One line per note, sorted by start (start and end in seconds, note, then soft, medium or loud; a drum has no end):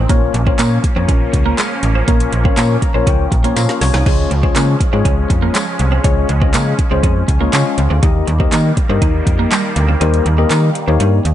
0.09 0.29 A#1 loud
0.09 7.99 F3 medium
0.09 0.32 A#3 medium
0.09 0.19 A#3 medium
0.09 4.02 A#3 medium
0.09 0.32 C#4 medium
0.09 4.02 C#4 loud
0.09 0.32 F4 medium
0.09 0.33 A#4 medium
0.09 0.33 C#5 loud
0.09 kick loud
0.09 closed hi-hat loud
0.34 0.54 A#1 loud
0.34 muted clean electric guitar stroke soft
0.34 closed hi-hat medium
0.46 0.77 A#3 medium
0.46 0.56 C4 medium
0.46 0.77 C#4 medium
0.46 0.77 F4 medium
0.46 0.77 A#4 medium
0.46 0.77 C#5 loud
0.46 kick loud
0.59 0.79 A#2 loud
0.59 0.69 A#3 medium
0.59 clap loud
0.59 closed hi-hat loud
0.59 tambourine medium
0.84 muted clean electric guitar stroke soft
0.84 kick medium
0.84 closed hi-hat medium
0.96 1.06 F2 loud
0.96 1.57 A#3 medium
0.96 1.06 C4 medium
0.96 1.57 C#4 medium
0.96 1.57 F4 medium
0.96 1.57 A#4 medium
0.96 1.57 C#5 medium
1.08 1.28 A#1 loud
1.08 1.18 C#4 medium
1.08 kick loud
1.08 closed hi-hat medium
1.33 1.53 C#2 loud
1.33 muted clean electric guitar stroke soft
1.33 kick medium
1.33 closed hi-hat medium
1.46 1.55 A#3 medium
1.58 1.68 G#3 medium
1.58 clap loud
1.58 closed hi-hat medium
1.58 tambourine loud
1.83 2.03 A1 medium
1.83 muted clean electric guitar stroke soft
1.83 closed hi-hat medium
1.95 2.05 C4 medium
2.08 2.28 A#1 loud
2.08 2.31 A#3 medium
2.08 2.17 A#3 medium
2.08 2.31 C#4 medium
2.08 2.31 F4 medium
2.08 2.31 A#4 medium
2.08 2.31 C#5 loud
2.08 kick loud
2.08 closed hi-hat loud
2.20 closed hi-hat medium
2.33 2.52 A#1 loud
2.33 muted clean electric guitar stroke soft
2.33 closed hi-hat medium
2.45 2.75 A#3 medium
2.45 2.55 C4 medium
2.45 2.76 C#4 medium
2.45 2.76 F4 medium
2.45 2.76 A#4 medium
2.45 2.76 C#5 loud
2.45 kick loud
2.57 2.77 A#2 loud
2.57 2.67 A#3 medium
2.57 clap loud
2.57 closed hi-hat loud
2.57 tambourine loud
2.82 3.05 A#5 medium
2.82 muted clean electric guitar stroke soft
2.82 kick medium
2.82 closed hi-hat medium
2.94 3.04 A#1 medium
2.94 3.25 A#3 medium
2.94 3.04 C4 medium
2.94 3.25 C#4 medium
2.94 3.25 F4 medium
2.94 3.25 A#4 medium
2.94 3.25 C#5 loud
3.07 3.27 C#2 loud
3.07 3.17 C#4 medium
3.07 3.53 G5 medium
3.07 kick loud
3.07 closed hi-hat medium
3.32 3.51 A#1 loud
3.32 muted clean electric guitar stroke soft
3.32 kick medium
3.32 closed hi-hat medium
3.44 3.82 A#3 medium
3.44 3.54 A#3 medium
3.44 3.82 C#4 medium
3.44 3.83 F4 medium
3.44 3.83 A#4 medium
3.44 3.80 C#5 medium
3.44 closed hi-hat medium
3.56 3.66 A#2 loud
3.56 3.66 A#3 medium
3.56 3.80 F5 medium
3.56 snare medium
3.56 closed hi-hat medium
3.56 tambourine loud
3.69 snare medium
3.81 3.91 C2 loud
3.81 4.04 C#5 medium
3.81 muted clean electric guitar stroke soft
3.81 snare loud
3.81 open hi-hat medium
3.94 4.04 C2 loud
3.94 4.03 D#4 medium
3.94 snare loud
4.06 4.26 C#2 loud
4.06 4.29 G#3 medium
4.06 7.99 G#3 medium
4.06 4.29 C#4 medium
4.06 7.99 C#4 medium
4.06 4.16 C#4 medium
4.06 4.29 F4 medium
4.06 4.29 G#4 medium
4.06 4.29 C#5 medium
4.06 kick loud
4.06 crash medium
4.31 4.51 C#2 loud
4.31 muted clean electric guitar stroke soft
4.31 closed hi-hat medium
4.43 4.74 G#3 medium
4.43 4.53 C4 medium
4.43 4.74 C#4 medium
4.43 4.74 F4 medium
4.43 4.74 G#4 medium
4.43 4.74 C#5 medium
4.43 kick loud
4.56 4.76 C#3 loud
4.56 4.65 A#3 medium
4.56 clap loud
4.56 closed hi-hat loud
4.56 tambourine loud
4.80 muted clean electric guitar stroke soft
4.80 kick medium
4.80 closed hi-hat medium
4.93 5.03 G#2 medium
4.93 5.54 G#3 medium
4.93 5.03 C4 medium
4.93 5.54 C#4 medium
4.93 5.54 F4 medium
4.93 5.54 G#4 medium
4.93 5.54 C#5 medium
5.05 5.25 C#2 loud
5.05 5.15 C#4 medium
5.05 kick loud
5.05 closed hi-hat medium
5.30 5.50 F2 medium
5.30 muted clean electric guitar stroke soft
5.30 kick medium
5.30 closed hi-hat medium
5.42 5.52 A#3 medium
5.55 5.65 G#3 medium
5.55 clap loud
5.55 closed hi-hat medium
5.55 tambourine loud
5.79 5.99 C2 loud
5.79 muted clean electric guitar stroke soft
5.79 closed hi-hat medium
5.92 6.02 C4 medium
6.04 6.24 C#2 loud
6.04 6.27 G#3 medium
6.04 6.14 C#4 medium
6.04 6.27 C#4 medium
6.04 6.27 F4 medium
6.04 6.27 G#4 medium
6.04 6.28 C#5 loud
6.04 kick loud
6.04 closed hi-hat loud
6.29 6.55 C#2 loud
6.29 muted clean electric guitar stroke soft
6.29 closed hi-hat medium
6.41 6.72 G#3 medium
6.41 6.51 C4 medium
6.41 6.72 C#4 medium
6.41 6.72 F4 medium
6.41 6.72 G#4 medium
6.41 6.72 D#5 loud
6.41 kick loud
6.54 6.74 C#3 loud
6.54 6.64 A#3 medium
6.54 clap loud
6.54 closed hi-hat medium
6.54 tambourine loud
6.79 muted clean electric guitar stroke soft
6.79 kick medium
6.79 closed hi-hat medium
6.91 7.01 C#2 loud
6.91 7.22 G#3 medium
6.91 7.01 C4 medium
6.91 7.22 C#4 medium
6.91 7.22 F4 medium
6.91 7.22 G#4 medium
6.91 7.22 C5 loud
7.03 7.23 F2 loud
7.03 7.13 C#4 medium
7.03 kick loud
7.03 closed hi-hat medium
7.28 7.48 C#2 loud
7.28 7.51 G#5 medium
7.28 muted clean electric guitar stroke soft
7.28 kick medium
7.28 closed hi-hat medium
7.40 7.79 G#3 medium
7.40 7.50 A#3 medium
7.40 7.79 C#4 medium
7.40 7.79 F4 medium
7.40 7.79 G#4 medium
7.40 7.79 C#5 loud
7.53 7.63 C#3 loud
7.53 7.63 G#3 medium
7.53 7.99 F5 medium
7.53 clap loud
7.53 closed hi-hat medium
7.53 tambourine loud
7.78 7.88 C#2 loud
7.78 muted clean electric guitar stroke soft
7.78 closed hi-hat medium
7.90 8.00 D2 medium
7.90 8.00 C4 medium
8.03 8.23 D#2 loud
8.03 11.34 D#3 medium
8.03 11.34 G3 medium
8.03 8.26 A#3 medium
8.03 11.34 A#3 medium
8.03 8.12 D#4 medium
8.03 8.26 D#4 medium
8.03 8.26 G4 medium
8.03 8.26 A#4 medium
8.03 8.26 D#5 loud
8.03 kick loud
8.03 closed hi-hat loud
8.27 8.47 D#2 loud
8.27 muted clean electric guitar stroke soft
8.27 closed hi-hat medium
8.40 8.70 A#3 medium
8.40 8.50 C4 medium
8.40 8.70 D#4 medium
8.40 8.70 G4 medium
8.40 8.71 A#4 medium
8.40 8.71 D#5 loud
8.40 kick loud
8.52 8.72 D#3 loud
8.52 8.62 A#3 medium
8.52 clap loud
8.52 closed hi-hat medium
8.52 tambourine loud
8.77 muted clean electric guitar stroke soft
8.77 kick medium
8.77 closed hi-hat medium
8.89 8.99 G2 loud
8.89 9.51 A#3 medium
8.89 8.99 C4 medium
8.89 9.51 D#4 medium
8.89 9.51 G4 medium
8.89 9.51 A#4 medium
8.89 9.51 D#5 medium
9.02 9.22 D#2 loud
9.02 9.12 D#4 medium
9.02 kick medium
9.02 closed hi-hat medium
9.27 9.46 F2 medium
9.27 muted clean electric guitar stroke soft
9.27 kick medium
9.27 closed hi-hat medium
9.39 9.49 A#3 medium
9.51 9.61 G3 medium
9.51 clap loud
9.51 closed hi-hat medium
9.51 tambourine loud
9.76 9.96 D2 loud
9.76 muted clean electric guitar stroke soft
9.76 closed hi-hat medium
9.89 9.98 C4 medium
10.01 10.21 D#2 loud
10.01 10.24 A#3 medium
10.01 10.11 D#4 medium
10.01 10.24 D#4 medium
10.01 10.24 G4 medium
10.01 10.24 A#4 medium
10.01 10.24 C5 loud
10.01 closed hi-hat loud
10.14 closed hi-hat medium
10.26 10.46 D#2 loud
10.26 muted clean electric guitar stroke soft
10.26 closed hi-hat medium
10.38 10.69 A#3 medium
10.38 10.48 C4 medium
10.38 10.69 D#4 medium
10.38 10.69 G4 medium
10.38 10.69 A#4 medium
10.38 10.69 D#5 loud
10.50 10.70 D#3 loud
10.50 10.60 A#3 medium
10.50 clap loud
10.50 closed hi-hat loud
10.50 tambourine loud
10.75 muted clean electric guitar stroke soft
10.75 closed hi-hat medium
10.88 10.98 D#2 loud
10.88 11.18 A#3 medium
10.88 10.97 C4 medium
10.88 11.18 D#4 medium
10.88 11.18 G4 medium
10.88 11.19 A#4 medium
10.88 11.19 C#5 medium
11.00 11.20 G2 loud
11.00 11.10 D#4 medium
11.00 closed hi-hat medium
11.25 11.34 D#2 medium
11.25 muted clean electric guitar stroke soft
11.25 closed hi-hat medium